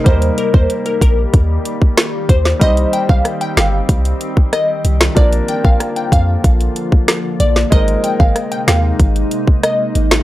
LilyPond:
<<
  \new Staff \with { instrumentName = "Synth pluck" } { \time 4/4 \key c \minor \tempo 4 = 94 c''16 r16 bes'16 c''16 r16 bes'16 bes'16 r4. r16 c''16 r16 | ees''16 r16 g''16 f''16 r16 g''16 f''16 r4 r16 ees''8. r16 | d''16 r16 g''16 f''16 r16 g''16 f''16 r4. r16 d''16 r16 | ees''16 r16 g''16 f''16 r16 g''16 f''16 r4 r16 ees''8. r16 | }
  \new Staff \with { instrumentName = "Grand piano" } { \time 4/4 \key c \minor <g bes ees' bes'>1 | <g c' ees' c''>1 | <f bes d' bes'>1 | <aes c' ees' bes'>1 | }
  \new Staff \with { instrumentName = "Ambient pad" } { \time 4/4 \key c \minor << { <ees g g'>1~ | <ees g g'>1 | <d f f'>1 | <c aes ees'>1 | } \\ { bes1 | c'1 | bes1~ | bes1 | } >> }
  \new Staff \with { instrumentName = "808-style bass" } { \clef bass \time 4/4 \key c \minor ees,8 r16 ees,16 r8 bes,,8 ees,8 r4 ees,8 | c,8 r16 c,16 r8 g,,8 c,8 r4 c,8 | bes,,8 r16 bes,,16 r8 f,8 bes,,8 r4 bes,,8 | aes,,8 r16 aes,,16 r8 ees,8 aes,,8 r4 aes,,8 | }
  \new DrumStaff \with { instrumentName = "Drums" } \drummode { \time 4/4 <hh bd>16 hh16 hh16 bd16 hh16 hh16 <hh bd>8 <hh bd>8 hh16 bd16 <hh ss sn>8 <hh bd>16 sn16 | <hh bd>16 hh16 hh16 bd16 <hh ss>16 hh16 <hh ss sn>8 <hh bd>16 hh16 hh16 bd16 <hh ss>8 hh16 <ss sn>16 | <hh bd>16 hh16 hh16 bd16 <hh ss>16 hh16 <hh bd>8 <hh bd>16 hh16 hh16 bd16 <hh ss sn>8 hh16 sn16 | <hh bd>16 hh16 hh16 bd16 <hh ss>16 hh16 <hh ss sn>8 <hh bd>16 hh16 hh16 bd16 <hh ss>8 hh16 <ss sn>16 | }
>>